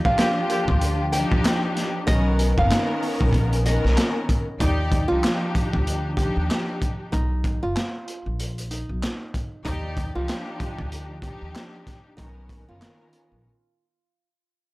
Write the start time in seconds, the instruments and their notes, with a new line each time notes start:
Already playing: analog synth pad F3 A#3 F4 G4
0.04 upright bass C2, string section F3 D4 F4 G4, nylon-string guitar F5, kick
0.18 horn section D3 A#3 G4, snare, clap, closed hi-hat
0.50 horn section D3 A#3 G4, closed hi-hat
0.68 upright bass D2, kick
0.81 closed hi-hat
1.12 string section F3 D4 D#4 G4, nylon-string guitar G5, closed hi-hat
1.32 upright bass D#2, kick
1.45 snare, clap, closed hi-hat
1.77 snare, closed hi-hat
2.06 upright bass B1, string section D#3 B3 C#4 A#4, analog synth pad B3 D#4 A#4, nylon-string guitar D#5, kick, closed hi-hat
2.39 closed hi-hat
2.58 upright bass F#1, string section D#3 B3 C#4 A#4, nylon-string guitar F5, kick
2.71 snare, clap, closed hi-hat
3.03 open hi-hat
3.21 upright bass A#1, kick
3.33 kick, closed hi-hat
3.53 closed hi-hat
3.64 string section D#3 B3 C#4 A#4, nylon-string guitar D#5, closed hi-hat
3.84 upright bass B1, snare
3.97 snare, clap, closed hi-hat
4.29 kick, closed hi-hat
4.59 upright bass D#2, string section F3 D#4 G4 D5, nylon-string guitar D#4, kick, closed hi-hat
4.92 kick, closed hi-hat
5.08 upright bass C2, string section F3 D4 D#4 G4, nylon-string guitar F4
5.24 snare, clap, closed hi-hat
5.55 kick, closed hi-hat
5.73 upright bass D2, kick
5.87 closed hi-hat
6.17 string section F3 D4 D#4 G4, nylon-string guitar G4, kick, closed hi-hat
6.37 upright bass D#2
6.50 snare, clap, closed hi-hat
6.82 kick, closed hi-hat
7.12 upright bass B1, nylon-string guitar D#4, kick, closed hi-hat
7.44 kick, closed hi-hat
7.63 upright bass F#1, nylon-string guitar F4
7.77 snare, clap, closed hi-hat
8.08 closed hi-hat
8.26 upright bass A#1
8.40 closed hi-hat
8.58 closed hi-hat
8.71 nylon-string guitar D#4, closed hi-hat
8.89 upright bass B1
9.03 snare, clap, closed hi-hat
9.34 kick, closed hi-hat
9.64 upright bass D#2, string section F3 D#4 G4 D5, nylon-string guitar D#4, kick, closed hi-hat
9.97 kick, closed hi-hat
10.14 upright bass C2, string section F3 D4 D#4 G4, nylon-string guitar F4
10.29 snare, clap, closed hi-hat
10.60 kick, closed hi-hat
10.79 upright bass D2, kick
10.92 closed hi-hat
11.22 string section F3 D4 D#4 G4, nylon-string guitar G4, kick, closed hi-hat
11.42 upright bass D#2
11.55 snare, clap, closed hi-hat
11.87 kick, snare, closed hi-hat
12.17 upright bass B1, string section D#3 B3 C#4 A#4, nylon-string guitar D#4, kick, closed hi-hat
12.49 kick, closed hi-hat
12.68 upright bass F#1, string section D#3 B3 C#4 A#4, nylon-string guitar F4
12.82 snare, clap, closed hi-hat
13.13 closed hi-hat
13.32 upright bass A#1